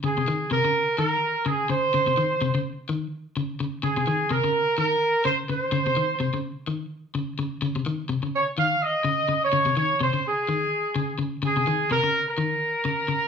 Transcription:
X:1
M:4/4
L:1/16
Q:"Swing 16ths" 1/4=126
K:Bbm
V:1 name="Horn section"
A4 B4 B4 A2 c2- | c6 z8 z2 | A4 B4 B4 c2 c2- | c6 z8 z2 |
z6 d2 f2 e4- e d- | d2 d2 c2 A8 z2 | A4 B3 B8- B |]
V:2 name="Clean electric guitar" clef=bass
D, C, E,2 C, D,2 z E,2 z2 D,2 D,2 | D, C, E,2 C, D,2 z E,2 z2 D,2 D,2 | D, C, E,2 C, D,2 z E,2 z2 D,2 D,2 | D, C, E,2 C, D,2 z E,2 z2 D,2 D,2 |
D, C, E,2 C, D,2 z E,2 z2 D,2 D,2 | D, C, E,2 C, D,2 z E,2 z2 D,2 D,2 | D, C, E,2 C, D,2 z E,2 z2 D,2 D,2 |]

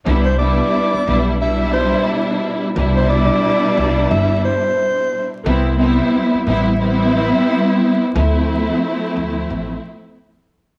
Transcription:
X:1
M:4/4
L:1/16
Q:"Swing 16ths" 1/4=89
K:C
V:1 name="Tenor saxophone"
z c d6 e2 c2 z4 | z c d6 e2 c6 | z16 | z16 |]
V:2 name="String section"
[G,B,DE]2 [G,B,DE]4 [G,B,DE]2 [B,,G,DE]8 | [B,,G,DE]12- [B,,G,DE]2 z2 | [G,B,CE]2 [G,B,CE]4 [G,B,CE]2 [G,B,CE]8 | [F,A,CE]12- [F,A,CE]2 z2 |]
V:3 name="Upright bass" clef=bass
C,,4 z2 B,,,4- B,,, z4 z | C,,4 z2 C,,2 G,,,2 z6 | C,,4 z2 A,,,4- A,,, z4 z | D,,4 z2 D,,2 A,,,2 z6 |]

